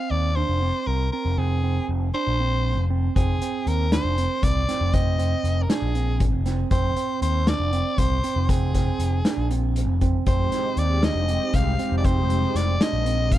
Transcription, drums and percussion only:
3.16 kick medium
3.16 closed hi-hat medium
3.42 closed hi-hat medium
3.67 closed hi-hat soft
3.92 snare loud
3.92 closed hi-hat medium
4.18 closed hi-hat medium
4.43 kick loud
4.43 closed hi-hat medium
4.69 snare soft
4.69 closed hi-hat medium
4.94 kick medium
4.94 closed hi-hat medium
5.19 closed hi-hat medium
5.45 closed hi-hat soft
5.70 snare medium
5.70 closed hi-hat medium
5.95 closed hi-hat soft
6.20 kick loud
6.20 closed hi-hat medium
6.46 snare soft
6.46 closed hi-hat soft
6.71 kick loud
6.71 closed hi-hat medium
6.96 closed hi-hat soft
7.22 closed hi-hat medium
7.47 snare loud
7.47 closed hi-hat medium
7.73 closed hi-hat medium
7.98 kick medium
7.98 closed hi-hat medium
8.24 closed hi-hat medium
8.49 kick medium
8.49 closed hi-hat medium
8.74 kick medium
8.74 snare soft
8.74 closed hi-hat medium
9.00 closed hi-hat medium
9.25 snare medium
9.25 closed hi-hat medium
9.51 closed hi-hat medium
9.76 closed hi-hat medium
10.01 kick medium
10.01 closed hi-hat soft
10.26 kick loud
10.26 closed hi-hat medium
10.52 snare soft
10.52 closed hi-hat medium
10.77 closed hi-hat soft
11.03 snare medium
11.03 closed hi-hat medium
11.28 closed hi-hat soft
11.54 kick medium
11.54 closed hi-hat medium
11.79 closed hi-hat soft
12.04 kick medium
12.04 closed hi-hat medium
12.30 closed hi-hat medium
12.56 snare soft
12.56 closed hi-hat medium
12.81 snare loud
12.81 closed hi-hat medium
13.06 closed hi-hat medium
13.31 kick loud
13.31 closed hi-hat medium

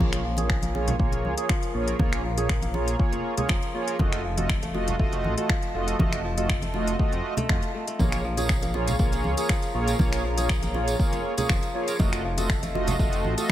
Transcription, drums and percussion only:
0.00 high conga loud
0.13 finger snap medium
0.13 closed hi-hat soft
0.37 closed hi-hat medium
0.37 muted conga soft
0.37 high conga medium
0.50 finger snap loud
0.50 kick loud
0.62 closed hi-hat soft
0.62 high conga medium
0.75 muted conga medium
0.88 closed hi-hat medium
0.88 low conga medium
0.99 kick loud
1.12 closed hi-hat soft
1.12 muted conga soft
1.25 high conga medium
1.38 closed hi-hat medium
1.49 finger snap loud
1.49 kick loud
1.49 muted conga soft
1.63 closed hi-hat soft
1.88 closed hi-hat medium
1.99 kick loud
1.99 muted conga medium
1.99 high conga loud
2.13 finger snap medium
2.13 closed hi-hat soft
2.38 closed hi-hat medium
2.38 muted conga soft
2.49 finger snap loud
2.49 kick loud
2.62 closed hi-hat soft
2.62 high conga medium
2.74 muted conga medium
2.88 closed hi-hat medium
2.99 kick loud
3.13 closed hi-hat soft
3.13 muted conga soft
3.37 closed hi-hat medium
3.37 low conga medium
3.49 finger snap loud
3.49 kick loud
3.49 muted conga soft
3.62 closed hi-hat soft
3.88 closed hi-hat medium
3.99 kick loud
3.99 muted conga medium
3.99 high conga loud
4.13 finger snap medium
4.13 closed hi-hat soft
4.37 closed hi-hat medium
4.37 muted conga soft
4.37 high conga medium
4.49 finger snap loud
4.49 kick loud
4.63 closed hi-hat soft
4.63 high conga medium
4.75 muted conga soft
4.88 closed hi-hat medium
4.88 low conga medium
4.99 kick loud
5.12 closed hi-hat soft
5.12 muted conga soft
5.24 high conga medium
5.38 closed hi-hat medium
5.49 finger snap loud
5.49 kick loud
5.49 muted conga soft
5.62 closed hi-hat soft
5.88 closed hi-hat soft
5.99 kick loud
5.99 muted conga soft
5.99 high conga loud
6.13 finger snap medium
6.13 closed hi-hat soft
6.38 closed hi-hat medium
6.38 muted conga soft
6.49 finger snap loud
6.49 kick loud
6.62 closed hi-hat soft
6.62 high conga medium
6.74 muted conga soft
6.87 closed hi-hat soft
6.99 kick loud
7.12 closed hi-hat soft
7.12 muted conga soft
7.37 closed hi-hat medium
7.37 low conga medium
7.49 finger snap loud
7.49 kick loud
7.49 muted conga soft
7.62 closed hi-hat soft
7.87 closed hi-hat soft
7.99 kick loud
7.99 tambourine medium
7.99 muted conga soft
7.99 high conga loud
8.12 finger snap medium
8.12 closed hi-hat soft
8.12 tambourine soft
8.37 closed hi-hat medium
8.37 tambourine medium
8.37 muted conga soft
8.37 high conga medium
8.49 finger snap loud
8.49 kick loud
8.49 tambourine medium
8.62 closed hi-hat soft
8.62 tambourine soft
8.62 high conga medium
8.74 muted conga soft
8.87 closed hi-hat medium
8.87 tambourine medium
8.87 low conga medium
8.99 kick loud
8.99 tambourine medium
9.12 closed hi-hat soft
9.12 tambourine soft
9.12 muted conga soft
9.24 high conga medium
9.37 closed hi-hat medium
9.37 tambourine medium
9.49 finger snap loud
9.49 kick loud
9.49 tambourine medium
9.49 muted conga soft
9.62 closed hi-hat soft
9.62 tambourine soft
9.88 closed hi-hat soft
9.88 tambourine medium
9.99 kick loud
9.99 tambourine medium
9.99 muted conga soft
9.99 high conga loud
10.13 finger snap medium
10.13 closed hi-hat soft
10.13 tambourine soft
10.37 closed hi-hat medium
10.37 tambourine medium
10.37 muted conga soft
10.49 finger snap loud
10.49 kick loud
10.49 tambourine medium
10.63 closed hi-hat soft
10.63 tambourine soft
10.63 high conga medium
10.74 muted conga soft
10.88 closed hi-hat medium
10.88 tambourine medium
10.99 kick loud
10.99 tambourine medium
11.13 closed hi-hat soft
11.13 tambourine soft
11.13 muted conga soft
11.37 closed hi-hat medium
11.37 tambourine medium
11.37 low conga medium
11.49 finger snap loud
11.49 kick loud
11.49 tambourine medium
11.49 muted conga soft
11.63 closed hi-hat soft
11.63 tambourine soft
11.88 closed hi-hat medium
11.88 tambourine medium
11.99 kick loud
11.99 tambourine medium
11.99 muted conga medium
11.99 high conga loud
12.13 finger snap medium
12.13 closed hi-hat soft
12.13 tambourine soft
12.37 closed hi-hat medium
12.37 tambourine medium
12.37 muted conga soft
12.37 high conga medium
12.49 finger snap medium
12.49 kick loud
12.63 closed hi-hat soft
12.63 tambourine soft
12.63 high conga medium
12.75 muted conga medium
12.87 closed hi-hat medium
12.87 tambourine medium
12.87 low conga medium
12.99 kick loud
12.99 tambourine medium
13.12 closed hi-hat soft
13.12 tambourine soft
13.12 muted conga soft
13.25 high conga medium
13.38 closed hi-hat medium
13.38 tambourine medium

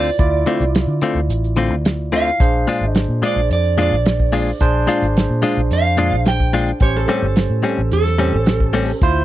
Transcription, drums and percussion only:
0.19 kick loud
0.19 closed hi-hat medium
0.47 closed hi-hat medium
0.61 closed hi-hat soft
0.75 snare loud
0.75 closed hi-hat medium
1.02 closed hi-hat medium
1.30 closed hi-hat medium
1.44 closed hi-hat soft
1.57 closed hi-hat medium
1.85 snare loud
1.85 closed hi-hat medium
2.12 closed hi-hat medium
2.27 closed hi-hat soft
2.40 kick loud
2.40 closed hi-hat medium
2.67 closed hi-hat medium
2.95 snare loud
2.95 closed hi-hat medium
3.23 closed hi-hat medium
3.51 closed hi-hat medium
3.65 closed hi-hat soft
3.78 closed hi-hat medium
4.06 snare loud
4.06 closed hi-hat medium
4.20 kick medium
4.33 open hi-hat medium
4.60 kick loud
4.60 closed hi-hat medium
4.89 closed hi-hat medium
5.03 closed hi-hat soft
5.17 snare loud
5.17 closed hi-hat medium
5.44 closed hi-hat medium
5.71 closed hi-hat medium
5.85 closed hi-hat soft
5.98 closed hi-hat medium
6.25 snare loud
6.25 closed hi-hat medium
6.40 kick medium
6.53 open hi-hat medium
6.67 closed hi-hat soft
6.80 kick loud
6.80 closed hi-hat medium
6.95 snare soft
7.08 closed hi-hat medium
7.36 snare loud
7.36 closed hi-hat medium
7.64 closed hi-hat medium
7.91 closed hi-hat medium
8.05 snare soft
8.05 closed hi-hat soft
8.19 closed hi-hat medium
8.46 snare loud
8.46 closed hi-hat medium
8.60 kick medium
8.74 open hi-hat medium
9.01 kick loud
9.01 closed hi-hat medium

